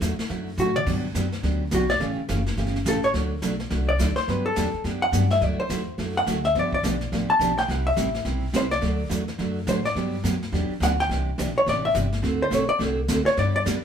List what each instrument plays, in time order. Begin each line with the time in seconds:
0.01 upright bass E2, steel-string acoustic guitar D3 F#3 A3 E4 F#4, snare, hi-hat pedal
0.19 muted upright bass stroke, snare
0.29 upright bass F#2, steel-string acoustic guitar D3 F#3 A3 E4 F#4, brush sweep, snare
0.58 upright bass A2, steel-string acoustic guitar D3 F#3 A3 E4 F#4, hollow-body jazz guitar F#4, hi-hat pedal
0.76 hollow-body jazz guitar D5, mid tom
0.86 upright bass G2, steel-string acoustic guitar D3 F#3 B3 D4 G4, brush sweep, kick, snare, crash
1.14 upright bass F#2, steel-string acoustic guitar D3 F#3 B3 D4 G4, snare, hi-hat pedal
1.32 snare
1.43 upright bass D2, steel-string acoustic guitar D3 F#3 B3 D4 G4, brush sweep, snare
1.71 upright bass B1, steel-string acoustic guitar D3 F#3 B3 D4 G4, hollow-body jazz guitar F#4, snare, hi-hat pedal
1.89 hollow-body jazz guitar D5, snare
1.99 upright bass A1, steel-string acoustic guitar C#3 E3 A3 C#4 G4, brush sweep, snare
2.18 muted upright bass stroke
2.28 upright bass F#1, steel-string acoustic guitar C#3 E3 A3 C#4 G4, snare, hi-hat pedal
2.46 snare
2.56 upright bass G1, steel-string acoustic guitar C#3 E3 A3 C#4 G4, brush sweep, snare
2.67 snare
2.76 snare
2.85 upright bass A1, steel-string acoustic guitar C#3 E3 A3 C#4 G4, hollow-body jazz guitar A4, snare, hi-hat pedal
3.03 hollow-body jazz guitar C#5, snare
3.13 upright bass D2, steel-string acoustic guitar D3 F#3 A3 D4 F#4, brush sweep, snare
3.42 upright bass B1, steel-string acoustic guitar D3 F#3 A3 D4 F#4, snare, hi-hat pedal
3.60 snare
3.70 upright bass C2, steel-string acoustic guitar D3 F#3 A3 D4 F#4, brush sweep, snare
3.89 hollow-body jazz guitar D5
3.99 upright bass D2, steel-string acoustic guitar D3 F#3 A3 D4 F#4, snare, hi-hat pedal
4.16 hollow-body jazz guitar C5, muted upright bass stroke, snare
4.28 upright bass G2, steel-string acoustic guitar D3 F#3 B3 D4 G4, hollow-body jazz guitar B4, brush sweep, snare
4.46 hollow-body jazz guitar A4
4.56 upright bass E2, steel-string acoustic guitar D3 F#3 B3 D4 G4, snare, hi-hat pedal
4.74 muted upright bass stroke
4.84 upright bass F#2, steel-string acoustic guitar D3 F#3 B3 D4 G4, brush sweep, snare
5.02 hollow-body jazz guitar F#5
5.12 upright bass G2, steel-string acoustic guitar D3 F#3 B3 D4 G4, snare, hi-hat pedal
5.30 hollow-body jazz guitar E5, snare
5.41 upright bass D2, steel-string acoustic guitar D3 F#3 A3 E4 F#4, hollow-body jazz guitar D5, brush sweep, snare
5.59 hollow-body jazz guitar C5, muted upright bass stroke
5.69 upright bass E2, steel-string acoustic guitar D3 F#3 A3 E4 F#4, snare, hi-hat pedal
5.98 upright bass F#2, steel-string acoustic guitar D3 F#3 A3 E4 F#4, brush sweep, snare
6.17 hollow-body jazz guitar F#5
6.27 upright bass D2, steel-string acoustic guitar D3 F#3 A3 E4 F#4, snare, hi-hat pedal
6.44 hollow-body jazz guitar E5, snare
6.55 upright bass G1, steel-string acoustic guitar D3 F3 B3 D4 G4, brush sweep, snare
6.59 hollow-body jazz guitar D5
6.73 hollow-body jazz guitar D5, kick
6.83 upright bass B1, steel-string acoustic guitar D3 F3 B3 D4 G4, snare, hi-hat pedal
7.01 snare
7.12 upright bass A1, steel-string acoustic guitar D3 F3 B3 D4 G4, brush sweep, snare
7.30 hollow-body jazz guitar A5, muted upright bass stroke
7.39 upright bass B1, steel-string acoustic guitar D3 F3 B3 D4 G4, snare, hi-hat pedal
7.58 hollow-body jazz guitar G5, snare
7.68 upright bass C2, steel-string acoustic guitar C3 G3 C4 E4 G4, hollow-body jazz guitar F#5, brush sweep, snare
7.87 hollow-body jazz guitar E5
7.96 upright bass A1, steel-string acoustic guitar C3 G3 C4 E4 G4, snare, hi-hat pedal
8.14 snare
8.25 upright bass B1, steel-string acoustic guitar C3 G3 C4 E4 G4, brush sweep, snare
8.53 upright bass C2, steel-string acoustic guitar C3 G3 C4 E4 G4, hollow-body jazz guitar C5, snare, hi-hat pedal
8.71 hollow-body jazz guitar D5, snare
8.81 upright bass D2, steel-string acoustic guitar D3 F#3 A3 D4 F#4, brush sweep, snare
9.09 upright bass E2, steel-string acoustic guitar D3 F#3 A3 D4 F#4, snare, hi-hat pedal
9.28 snare
9.38 upright bass F#2, steel-string acoustic guitar D3 F#3 A3 D4 F#4, brush sweep, snare
9.67 upright bass A2, steel-string acoustic guitar D3 F#3 A3 D4 F#4, hollow-body jazz guitar C5, snare, hi-hat pedal
9.85 hollow-body jazz guitar D5, snare
9.95 upright bass G2, steel-string acoustic guitar D3 F#3 B3 D4 G4, brush sweep, snare
10.23 upright bass F#2, steel-string acoustic guitar D3 F#3 B3 D4 G4, snare, hi-hat pedal
10.43 snare
10.52 upright bass E2, steel-string acoustic guitar D3 F#3 B3 D4 G4, brush sweep, snare
10.70 muted upright bass stroke
10.80 upright bass D2, steel-string acoustic guitar D3 F#3 B3 D4 G4, hollow-body jazz guitar F#5, snare, hi-hat pedal
11.00 hollow-body jazz guitar G5, snare
11.09 upright bass C2, steel-string acoustic guitar C3 E3 D4 G4, brush sweep, snare
11.38 upright bass B1, steel-string acoustic guitar C3 E3 D4 G4, snare, hi-hat pedal
11.58 hollow-body jazz guitar C#5
11.66 upright bass A1, steel-string acoustic guitar C3 E3 D4 G4, hollow-body jazz guitar D5, brush sweep, snare
11.85 hollow-body jazz guitar E5
11.94 upright bass G1, steel-string acoustic guitar C3 E3 D4 G4, snare, hi-hat pedal
12.12 snare
12.22 upright bass D2, steel-string acoustic guitar D3 A3 C4 F#4 A4, brush sweep, snare
12.42 hollow-body jazz guitar C5
12.51 upright bass B1, steel-string acoustic guitar D3 A3 C4 F#4 A4, snare, hi-hat pedal
12.55 hollow-body jazz guitar C#5
12.69 hollow-body jazz guitar D5, muted upright bass stroke
12.79 upright bass C2, steel-string acoustic guitar D3 A3 C4 F#4 A4, brush sweep, snare
13.08 upright bass D2, steel-string acoustic guitar D3 A3 C4 F#4 A4, snare, hi-hat pedal
13.26 hollow-body jazz guitar C#5, muted upright bass stroke, snare
13.37 upright bass G2, steel-string acoustic guitar D3 G3 B3 D4 G4, hollow-body jazz guitar D5, brush sweep, snare
13.56 hollow-body jazz guitar D5
13.65 upright bass F#2, steel-string acoustic guitar D3 G3 B3 D4 G4, snare, hi-hat pedal